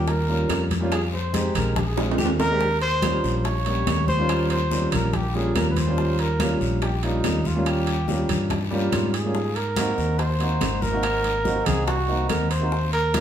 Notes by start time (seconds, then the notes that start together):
Already playing: D#2 F4
0.08 A#4, high bongo, high conga, high timbale, long guiro
0.27 G3 A#3 C#4 F4, high bongo, high conga
0.49 F2, high bongo, low bongo, high conga, high timbale, low timbale, short guiro, claves
0.71 high bongo, high conga, high timbale, short guiro
0.80 G3 A#3 C#4 F4
0.92 G#4, high bongo, high conga, high timbale, long guiro, claves
1.13 C5, high bongo, high conga
1.33 G#3 C4 D#4 G4, high bongo, high conga, high timbale, short guiro
1.55 A#1 A#4, high conga, low conga, high timbale, short guiro, claves
1.76 G#4, high bongo, high conga, low conga, high timbale, long guiro
1.97 G#3 C4 D4 F4, high bongo, high conga, high timbale
2.11 low timbale
2.18 D#2 G4, low bongo, high conga, short guiro, claves
2.26 low timbale
2.40 A#4, low bongo, high conga, low timbale, short guiro
2.49 G#3 C4 D4 G4
2.61 high bongo, high conga, long guiro
2.81 C5, high conga, high timbale
3.02 G3 A#3 C#4 F4, high bongo, high conga, high timbale, short guiro, claves
3.24 A#1, high bongo, short guiro
3.39 C5
3.45 C#5, high bongo, high conga, high timbale, long guiro
3.65 G3 A#3 C#4 G4, high bongo, high conga, high timbale
3.87 D#2, high bongo, low bongo, high conga, high timbale, low timbale, short guiro, claves
4.08 C5, high bongo, high conga, short guiro
4.18 G3 A#3 C#4 F4
4.29 high bongo, high conga, high timbale, long guiro, claves
4.50 C5, high conga, high timbale
4.71 G3 A#3 C#4 F4, high bongo, high conga, short guiro
4.92 A#1 A#4, high bongo, high conga, low conga, high timbale, short guiro, claves
5.13 G4, high bongo, high conga, low conga, high timbale, long guiro
5.34 G3 A#3 C#4 F4 G#4, high bongo, high conga
5.55 D#2 A#4, high bongo, low bongo, high conga, high timbale, low timbale, short guiro, claves
5.71 B4
5.76 C5, high bongo, high conga, high timbale, short guiro
5.87 G3 A#3 C#4 F4
5.97 high bongo, high conga, long guiro
6.19 A#4, high conga, high timbale
6.39 G3 A#3 C#4 F4, high bongo, high conga, high timbale, short guiro, claves
6.61 A#1, high bongo, short guiro
6.82 G4, high bongo, high conga, high timbale, long guiro
7.02 G3 A#3 C#4 D#4 F4, high bongo, high conga, high timbale
7.24 D#2, high bongo, low bongo, high conga, high timbale, low timbale, short guiro, claves
7.45 F4, high bongo, high conga, short guiro
7.54 G3 A#3 C#4 F4
7.66 G4, high bongo, high conga, high timbale, long guiro, claves
7.87 high conga, high timbale
8.08 G3 A#3 C#4 F4, high bongo, high conga, short guiro
8.29 G2, high bongo, high conga, low conga, high timbale, short guiro, claves
8.50 high bongo, high conga, low conga, high timbale, long guiro
8.70 G3 A#3 C#4 F4, high bongo, high conga
8.92 G#2 F4, high bongo, low bongo, high conga, high timbale, short guiro, claves
9.14 G#4, high bongo, high timbale, short guiro
9.24 G3 A#3 C#4 F4
9.34 high bongo, high conga, long guiro
9.55 A#4, high conga, high timbale
9.76 A#3 C4 D#4 F#4, high bongo, high conga, high timbale, short guiro, claves
9.98 D#2, high bongo, short guiro
10.19 C5, high bongo, high conga, high timbale, long guiro
10.39 A#3 C4 D#4 F#4, high bongo, high conga, high timbale
10.61 G#1, high bongo, low bongo, high conga, high timbale, low timbale, short guiro, claves
10.82 A#4, high bongo, high conga, short guiro
10.92 A#3 C4 D#4 F#4
11.03 high bongo, high conga, high timbale, long guiro, claves
11.24 high conga, high timbale
11.44 A#3 C4 D#4 F#4, high bongo, high conga, short guiro
11.66 C2 G#4, high bongo, high conga, low conga, high timbale, short guiro, claves
11.87 F#4, high bongo, high conga, high timbale, long guiro
12.08 A#3 C4 D#4 F#4, high bongo, high conga
12.29 D#2 A#4, high bongo, low bongo, high conga, high timbale, short guiro, claves
12.50 C5, high bongo, high timbale, short guiro
12.60 A#3 C4 D#4 F#4
12.72 high bongo, high conga, long guiro
12.93 A#4, high conga, high timbale
13.13 A#3 C#4 F4 G4, high bongo, high conga, high timbale, short guiro, claves